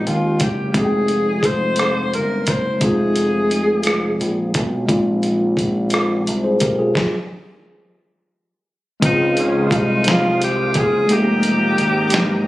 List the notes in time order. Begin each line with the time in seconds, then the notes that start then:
Already playing: G#3 C4 D4 D#4 G4
0.07 D#2 F4, closed hi-hat
0.40 F#1 G4, kick, closed hi-hat
0.70 G#3 G4
0.74 F1 C4 D#4 G#4, kick, closed hi-hat
0.78 F#4
0.85 G5
1.08 closed hi-hat
1.43 C5, kick, closed hi-hat
1.76 cross-stick, closed hi-hat
2.14 G1 A#4, closed hi-hat
2.47 F#1 C5, kick, closed hi-hat
2.79 F1 G#3 C4, kick, closed hi-hat
2.83 D#4 F4 G#4
3.16 closed hi-hat
3.51 closed hi-hat
3.83 cross-stick, closed hi-hat
4.20 A#1, closed hi-hat
4.54 B1, kick, closed hi-hat
4.86 A#1 G#3 C4, kick, closed hi-hat
4.90 D#4 F4
5.23 closed hi-hat
5.57 kick, closed hi-hat
5.90 cross-stick, closed hi-hat
6.27 C2, closed hi-hat
6.44 G#4 C5
6.60 B1 G4 A#4, kick, closed hi-hat
6.79 F4 G#4
6.95 kick, snare
9.00 C#2 F3 G#3 C4 D#4 F4 C5 F5 D#6, kick, closed hi-hat
9.04 D#4 F4
9.37 C#4, closed hi-hat
9.66 F4
9.71 C2 D#4, kick, closed hi-hat
10.04 F4, snare, closed hi-hat
10.42 G4, closed hi-hat
10.74 F#1 G#4, kick, closed hi-hat
11.07 G#3 A#3 D#4 G4 A#4 G5 A#5, closed hi-hat
11.11 F1 D#4 G4
11.43 closed hi-hat
11.78 G#1, closed hi-hat
12.10 snare, closed hi-hat